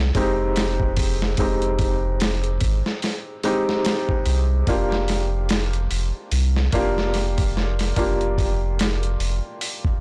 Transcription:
Already playing: C2 G#3 C4 D#4 G4
0.15 F1 G#3 C4 D#4 G4, kick, open hi-hat
0.56 snare, open hi-hat
0.80 kick
0.96 kick, open hi-hat
1.22 snare
1.37 F1 G#3 C4 D#4 G4, kick, open hi-hat
1.62 closed hi-hat
1.79 kick, open hi-hat
2.20 snare, open hi-hat
2.44 closed hi-hat
2.61 G#1, kick, open hi-hat
2.86 snare
3.02 snare, open hi-hat
3.43 G#3 C4 D#4 G4, open hi-hat
3.69 snare
3.85 snare, open hi-hat
4.09 kick
4.26 C2, open hi-hat
4.67 F1 A#3 D4 F4 G4, kick, open hi-hat
4.92 snare
5.08 snare, open hi-hat
5.49 snare, open hi-hat
5.73 closed hi-hat
5.91 F1, open hi-hat
6.31 C2, open hi-hat
6.56 snare
6.72 F1 A#3 D4 F4 G4, kick, open hi-hat
6.98 snare
7.14 snare, open hi-hat
7.38 kick, open hi-hat
7.57 snare
7.79 snare, open hi-hat
7.96 F1 A#3 D4 F4 G4, kick, open hi-hat
8.21 closed hi-hat
8.38 kick, open hi-hat
8.79 snare, open hi-hat
9.03 closed hi-hat
9.20 F1, open hi-hat
9.61 open hi-hat
9.85 kick

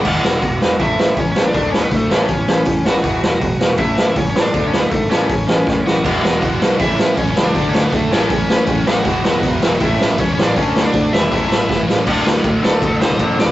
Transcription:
Already playing: F#4 F#5
0.05 E1 E2 B2 E3, kick, crash
0.23 E1 E2 B2, snare
0.42 E1 E2 B2, kick, open hi-hat
0.59 E1 E2 B2, snare
0.78 A1 A2 E3 A3 E4, kick, open hi-hat
0.83 E5
0.96 A1 A2 E3, snare
1.16 C#2 A2 E3 C#4 C#5, kick, open hi-hat
1.32 A1 A2 C#4 C#5
1.36 E3, snare
1.47 D4 D5
1.54 D2 D3 A3 D4, kick, open hi-hat
1.71 D3 A3 C#4 C#5, snare
1.84 B3 B4
1.91 D2 D3 A3, kick, open hi-hat
1.95 A3 A4
2.09 A1 A2 E3 A3 C#4, snare
2.13 C#5
2.28 A1 A2 E3, kick, open hi-hat
2.48 A1 A2 E3, snare
2.65 A2 E3, kick, open hi-hat
2.85 A1 A2 E3 F#4 F#5, snare
3.03 E1 E2 B2 E3, kick, open hi-hat
3.22 E1 E2 B2, snare
3.40 E1 E2 B2, kick, open hi-hat
3.60 E1 E2 B2, snare
3.77 A1 A2 E3 A3 E4 E5, kick, open hi-hat
3.96 A1 A2 E3, snare
4.15 C#2 A2 E3 C#4 C#5, kick, open hi-hat
4.30 A1 C#4 C#5
4.34 A2 E3, snare
4.42 D4 D5
4.53 D2 D3 A3 D4, kick, open hi-hat
4.67 C#4 C#5
4.73 D3 A3, snare
4.78 B3 B4
4.90 G#1 D3 A3 A4, kick, open hi-hat
5.10 A1 A2 E3 A3 C#4 C#5, snare
5.29 A1 A2 E3, kick, open hi-hat
5.48 A1 A2 E3, snare
5.66 A2 E3, kick, snare
5.85 A1 A2 E3 F#4 F#5, snare
6.04 E1 E2 B2 E3 G#3 B3 E4, kick, crash
6.23 E1 E2 B2, snare
6.42 E1 E2 B2, kick, open hi-hat
6.61 B1 E2 B2 G#3 B3 E4, snare
6.65 E3
6.80 A1 A2 E3 A3 C#4 E4 E5, kick, open hi-hat
6.84 E4
6.98 A1 A2 E3, snare
7.17 C#2 A2 E3 C#4 C#5, kick, open hi-hat
7.31 C#4 C#5
7.36 C#2 A2 E3 A3 C#4 E4, snare
7.44 D4 D5
7.53 D2 D3 A3 D4, kick, open hi-hat
7.57 A3 D4 F#4
7.70 D3 A3 C#4 C#5
7.74 snare
7.82 B3 B4
7.92 D2 D3 A3 A4, kick, open hi-hat
8.11 A1 A2 E3 A3 C#4 E4 C#5, snare
8.30 A1 A2 E3, kick, open hi-hat
8.49 A1 A2 E3, snare
8.66 A2 E3 A3, kick, open hi-hat
8.71 C#4 E4
8.86 A1 A2 E3 F#4 F#5, snare
9.05 E1 E2 B2 E3 G#3 B3 E4, kick, open hi-hat
9.24 E1 E2 B2, snare
9.43 E1 E2 B2, kick, open hi-hat
9.56 E5
9.62 E1 E2 B2 G#3 B3 E4, snare
9.66 E3
9.80 A1 A2 E3 A3 C#4 E4 E5, kick, open hi-hat
9.85 E4
9.99 A1 A2 E3, snare
10.18 C#2 A2 E3 C#4 C#5, kick, open hi-hat
10.33 A1 C#4 C#5
10.37 A2 E3 A3 C#4 E4, snare
10.43 D4 D5
10.54 D2 D3 A3 C#4 D4 F#4 C#5, kick, open hi-hat
10.75 D3 A3, snare
10.85 D4 D5
10.93 D2 D3 A3, kick, open hi-hat
11.11 E1 E2 B2 E3 E4 E5, snare
11.31 A1 A2 E3 A3 C#4 E4, kick, open hi-hat
11.49 A1 A2 E3, snare
11.69 A2 E3, kick, snare
11.87 A1 A2 E3 A3 C#4 E4, snare
12.06 D2 D3 F#3 A3 D4, kick, crash
12.25 D2 D3 A3, snare
12.44 D2 D3 A3, kick, ride
12.62 D2 D3 A3 D4 A4, snare
12.81 D2 D3 A3, kick, ride
12.99 D3 A3 C5, snare
13.10 kick
13.18 A1 D3 A3 D4, kick, ride
13.38 D3 A3 D5, snare
13.47 kick

